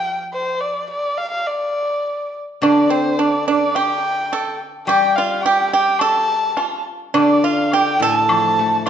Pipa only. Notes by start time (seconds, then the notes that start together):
2.63 D4
2.90 C4
3.19 D4
3.48 D4
3.76 G4
4.33 A4
4.89 G4
5.18 F4
5.46 G4
5.73 G4
6.01 A4
6.57 F4
7.14 D4
7.44 F4
7.73 G4
8.02 A4
8.86 F4